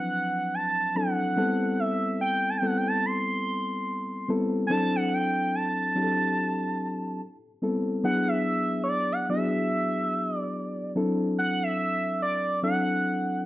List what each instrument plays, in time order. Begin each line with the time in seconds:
Already playing: reed electric piano F3 F#3 C4 D4 E4 B4, analog synth lead F#5
0.54 analog synth lead A5
0.95 reed electric piano F#3 C4 D4 E4 A4, analog synth lead F#5
1.36 reed electric piano G3 B3 C4 E4 A4
1.80 analog synth lead E5
2.21 analog synth lead G5
2.49 analog synth lead A5
2.57 analog synth lead G5
2.62 reed electric piano G3 B3 C4 E4 A4
2.66 analog synth lead F#5
2.77 analog synth lead G5
2.88 analog synth lead A5
3.05 analog synth lead C6
4.28 reed electric piano G3 B3 C4 E4 A4
4.67 reed electric piano F#3 C4 D4 E4, analog synth lead G#5
4.71 reed electric piano A4, analog synth lead A5
4.96 analog synth lead F#5
5.14 analog synth lead G5
5.55 analog synth lead A5
5.95 reed electric piano F#3 C4 D4 E4 G4
6.03 reed electric piano A4
7.62 reed electric piano G3 B3 C4 E4 A4
8.03 reed electric piano F#3 B3 D4 E4 G#4, analog synth lead F#5
8.28 analog synth lead E5
8.84 analog synth lead C#5
8.88 analog synth lead D5
9.12 analog synth lead F#5
9.29 reed electric piano F#3 B3 D4 E4 F#4, analog synth lead E5
9.37 reed electric piano G#4
10.37 analog synth lead D5
10.95 reed electric piano F#3 C4 D4 E4 A4
11.38 analog synth lead F#5
11.63 analog synth lead E5
12.22 analog synth lead D5
12.62 reed electric piano F#3 C4 D4 E4 A4, analog synth lead F#5